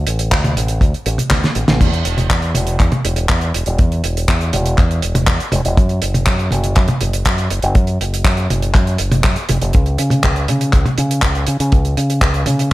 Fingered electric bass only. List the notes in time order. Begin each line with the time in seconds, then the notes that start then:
0.07 A1
0.32 D2
0.57 A1
0.81 D2
1.06 A1
1.31 D2
1.56 A1
1.68 A1
1.81 E2
2.05 E1
2.30 E2
2.55 E1
2.80 E2
3.05 E1
3.29 E2
3.54 E1
3.66 E1
3.79 E2
4.04 E1
4.28 E2
4.53 E1
4.78 E2
5.03 E1
5.27 E2
5.52 E1
5.65 E1
5.77 F#2
6.02 F#1
6.27 F#2
6.52 F#1
6.77 F#2
7.01 F#1
7.26 F#2
7.51 F#1
7.63 F#1
7.75 F#2
8.00 F#1
8.25 F#2
8.50 F#1
8.75 F#2
9.00 F#1
9.24 F#2
9.49 F#1
9.62 F#1
9.75 C#2
9.99 C#3
10.24 C#2
10.48 C#3
10.73 C#2
10.98 C#3
11.23 C#2
11.48 C#3
11.60 C#3
11.73 C#2
11.97 C#3
12.21 C#2
12.47 C#3